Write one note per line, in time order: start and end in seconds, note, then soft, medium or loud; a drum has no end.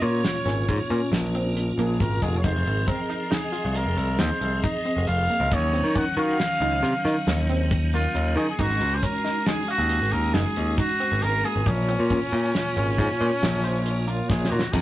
0.00 2.39 A#2 medium
0.00 0.22 A#2 medium
0.00 2.39 A#3 soft
0.00 2.40 C#4 medium
0.00 2.40 F4 soft
0.00 0.28 F4 medium
0.00 1.34 C#5 medium
0.00 closed hi-hat soft
0.25 snare loud
0.25 closed hi-hat medium
0.45 0.65 G#1 medium
0.45 0.71 C#4 medium
0.45 snare soft
0.45 closed hi-hat medium
0.69 0.78 G#2 medium
0.69 kick medium
0.69 closed hi-hat medium
0.90 1.00 A#2 medium
0.90 1.16 C#4 medium
0.90 closed hi-hat soft
1.12 1.71 A#1 medium
1.12 snare medium
1.12 closed hi-hat medium
1.35 1.60 C4 medium
1.35 closed hi-hat medium
1.57 closed hi-hat medium
1.78 1.98 A#1 medium
1.78 2.04 A#3 medium
1.78 2.02 G#4 medium
1.78 closed hi-hat medium
2.00 2.20 G#1 medium
2.00 2.24 A#4 medium
2.00 kick loud
2.00 closed hi-hat medium
2.22 2.42 F1 medium
2.22 2.35 D#4 medium
2.22 2.39 G#4 medium
2.22 kick medium
2.22 closed hi-hat medium
2.37 2.45 C#5 medium
2.42 2.54 F1 medium
2.42 5.46 F3 medium
2.42 5.47 C4 medium
2.42 2.69 D#4 medium
2.42 5.48 G#4 soft
2.42 2.89 C5 medium
2.42 5.48 D#5 medium
2.42 kick medium
2.42 closed hi-hat medium
2.54 2.64 F1 medium
2.66 2.86 G#1 medium
2.66 closed hi-hat medium
2.87 3.00 C4 medium
2.87 3.32 A#4 medium
2.87 kick loud
2.87 closed hi-hat medium
3.10 3.22 D#4 medium
3.10 closed hi-hat medium
3.31 3.44 D#4 medium
3.31 3.78 G#4 medium
3.31 snare loud
3.31 closed hi-hat medium
3.52 3.78 F4 medium
3.52 closed hi-hat medium
3.65 3.84 C2 medium
3.75 4.21 A#4 medium
3.75 closed hi-hat medium
3.86 3.96 F1 medium
3.97 4.17 C2 medium
3.97 closed hi-hat soft
4.19 4.29 D#2 medium
4.19 4.45 D#4 medium
4.19 4.61 C5 medium
4.19 snare loud
4.19 closed hi-hat medium
4.41 4.61 C2 medium
4.41 closed hi-hat medium
4.62 4.76 D#4 medium
4.62 5.09 D#5 medium
4.62 kick medium
4.62 closed hi-hat medium
4.85 5.11 C4 medium
4.85 closed hi-hat medium
4.96 5.06 F1 medium
5.07 5.27 F1 medium
5.07 5.55 F5 medium
5.07 closed hi-hat medium
5.30 5.55 A#3 medium
5.30 closed hi-hat medium
5.40 5.50 C#2 medium
5.50 5.81 D#2 medium
5.50 8.54 D#3 medium
5.50 8.55 F#3 medium
5.50 8.56 C#4 medium
5.50 8.54 D#4 medium
5.50 5.98 C#5 medium
5.50 kick loud
5.50 closed hi-hat medium
5.73 5.86 C4 medium
5.73 closed hi-hat medium
5.84 6.04 D#3 medium
5.95 6.08 C#4 medium
5.95 6.17 F#5 medium
5.95 kick medium
5.95 closed hi-hat medium
6.17 6.37 D#3 medium
6.17 6.43 F#4 medium
6.17 7.46 F5 loud
6.17 closed hi-hat medium
6.40 snare medium
6.40 closed hi-hat medium
6.60 6.80 C#2 medium
6.60 6.87 D#4 medium
6.60 closed hi-hat medium
6.83 6.93 C3 medium
6.83 closed hi-hat medium
7.05 7.15 D#3 medium
7.05 7.31 D#4 medium
7.05 snare soft
7.05 closed hi-hat soft
7.27 8.05 D#2 medium
7.27 snare loud
7.27 closed hi-hat medium
7.50 7.75 C4 medium
7.50 closed hi-hat medium
7.71 kick loud
7.71 closed hi-hat medium
7.93 8.19 A#3 medium
7.93 8.38 F4 medium
7.93 closed hi-hat medium
8.15 8.34 D#2 medium
8.15 closed hi-hat medium
8.36 8.46 D#3 medium
8.36 8.50 D#4 medium
8.36 8.50 G#4 medium
8.36 closed hi-hat medium
8.50 8.62 G#4 medium
8.57 8.68 G#1 medium
8.57 11.61 G#3 medium
8.57 11.63 C#4 medium
8.57 11.62 D#4 medium
8.57 8.85 D#4 medium
8.57 11.62 F#4 medium
8.57 8.96 F#4 loud
8.57 kick loud
8.57 closed hi-hat medium
8.69 8.79 G#1 medium
8.79 8.99 C#2 medium
8.79 closed hi-hat medium
8.95 9.05 C5 medium
9.03 9.15 C#4 medium
9.03 9.49 A#4 medium
9.03 kick medium
9.03 closed hi-hat medium
9.24 9.37 D#4 medium
9.24 snare soft
9.24 closed hi-hat medium
9.47 9.60 D#4 medium
9.47 9.69 G#4 medium
9.47 snare loud
9.47 closed hi-hat medium
9.68 10.14 F#4 medium
9.68 9.94 F5 medium
9.68 closed hi-hat medium
9.78 9.98 D#2 medium
9.90 closed hi-hat medium
10.01 10.11 G#1 medium
10.12 10.32 D#2 medium
10.12 10.35 A#4 medium
10.12 closed hi-hat medium
10.34 10.44 F#1 medium
10.34 10.60 D#4 medium
10.34 10.78 G#4 medium
10.34 snare medium
10.34 closed hi-hat medium
10.56 10.76 D#2 medium
10.56 closed hi-hat medium
10.78 10.91 D#4 medium
10.78 11.24 F#4 medium
10.78 kick loud
10.78 closed hi-hat medium
11.00 11.26 C4 medium
11.00 closed hi-hat medium
11.12 11.21 G#1 medium
11.22 11.42 G#1 medium
11.22 11.47 A#4 medium
11.22 closed hi-hat medium
11.44 11.70 A#3 medium
11.44 11.69 G#4 medium
11.44 closed hi-hat soft
11.56 11.65 G#1 medium
11.63 11.96 A#1 medium
11.63 14.68 A#2 medium
11.63 14.68 A#3 medium
11.63 14.69 F4 medium
11.63 14.69 C#5 medium
11.63 kick loud
11.63 closed hi-hat medium
11.67 14.07 C#4 medium
11.88 12.01 C4 medium
11.88 closed hi-hat medium
11.99 12.19 A#2 medium
12.10 12.23 C#4 medium
12.10 kick loud
12.10 closed hi-hat medium
12.32 12.52 A#2 medium
12.32 12.58 F4 medium
12.32 closed hi-hat medium
12.55 snare medium
12.55 closed hi-hat medium
12.77 12.96 G#1 medium
12.77 13.02 C#4 medium
12.77 closed hi-hat medium
12.98 13.08 G#2 medium
12.98 kick medium
12.98 closed hi-hat medium
13.21 13.30 A#2 medium
13.21 13.46 C#4 medium
13.21 closed hi-hat medium
13.43 14.20 A#1 medium
13.43 snare loud
13.43 closed hi-hat medium
13.64 13.89 C5 medium
13.64 closed hi-hat medium
13.86 closed hi-hat medium
14.08 14.33 A#3 medium
14.08 14.31 F4 medium
14.08 closed hi-hat medium
14.29 14.49 A#1 medium
14.29 14.52 G#4 medium
14.29 kick loud
14.29 snare medium
14.45 snare medium
14.50 14.61 A#2 medium
14.50 14.65 D#4 medium
14.50 14.74 F#4 medium
14.59 snare medium
14.72 14.82 F2 medium
14.72 14.82 C3 soft
14.72 14.82 D#3 medium
14.72 14.82 D#4 medium
14.72 14.82 G#4 medium
14.72 14.82 A#4 medium
14.72 14.82 D#5 medium
14.72 kick loud
14.72 crash medium